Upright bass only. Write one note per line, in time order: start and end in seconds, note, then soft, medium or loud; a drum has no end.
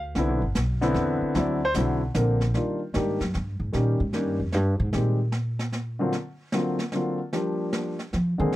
0.00 0.14 D2 medium
0.16 0.28 C2 medium
0.28 0.41 B1 medium
0.42 0.54 G1 medium
0.55 0.94 B1 medium
0.94 1.19 E2 medium
1.21 muted upright bass stroke soft
1.35 1.73 D2 medium
1.75 2.13 B1 medium
2.15 2.53 A#1 loud
2.96 3.19 G#2 medium
3.20 3.33 F#2 medium
3.35 3.59 G2 medium
3.60 3.73 G#2 medium
3.74 4.00 A#2 medium
4.00 4.14 G#2 medium
4.14 4.39 G2 medium
4.39 4.54 F2 medium
4.54 4.79 G2 medium
4.80 4.93 G#2 medium
4.94 6.10 A#2 medium
8.14 8.39 F3 medium
8.40 8.52 D#3 medium